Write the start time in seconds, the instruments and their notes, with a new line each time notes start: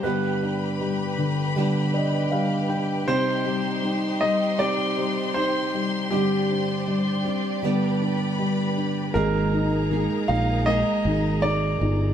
Already playing: string section G4
0.03 nylon-string guitar G2 D3 G3 B3 D4 G4, felt piano G3, grand piano B4, string section B4 B5
0.42 felt piano D4
0.80 felt piano G3
1.18 felt piano D3
1.55 nylon-string guitar G2 D3 G3 B3 D4, felt piano G3
1.59 nylon-string guitar G4
1.94 felt piano D5 D#5
2.32 felt piano G3 F5
2.69 felt piano D4 G5
3.07 felt piano C3, nylon-string guitar C3 G3 C4 D#4 G4, string section D#4 C5 C6, grand piano C5
3.45 felt piano G3
3.83 nylon-string guitar G3 C4 D#4 G4, felt piano D#4
4.21 felt piano G3, grand piano D#5
4.58 nylon-string guitar C3 G3 C4 D#4 G4, felt piano G4, grand piano D5
4.98 felt piano G3
5.34 felt piano D#4, grand piano C5
5.74 felt piano G3
6.10 nylon-string guitar G2 D3 G3 C4 D4 G4, felt piano G3, grand piano G4, string section C5 D5
6.49 felt piano D4
6.87 felt piano G3
7.25 nylon-string guitar G3 C4 D4 G4, felt piano D4
7.62 nylon-string guitar G2 D3 G3 B3 D4 G4, felt piano G3, string section B4 B5
8.01 felt piano D4
8.39 felt piano G3
8.77 felt piano D4
9.14 fingered electric bass G#1, felt piano G#3, nylon-string guitar G#3 A#3 D#4 G#4, string section D#4 G#4 A#4 A#5, grand piano A#4
9.53 felt piano D#4
9.91 nylon-string guitar G#3 A#3 D#4 G#4, felt piano G#3
10.28 fingered electric bass A#1, felt piano D#4, grand piano F5
10.66 nylon-string guitar G#3 A#3 D#4, felt piano G#3, grand piano D#5
10.70 nylon-string guitar G#4
11.05 fingered electric bass G#1, felt piano D#4
11.42 felt piano G#3, grand piano D5
11.81 fingered electric bass G1, felt piano D#4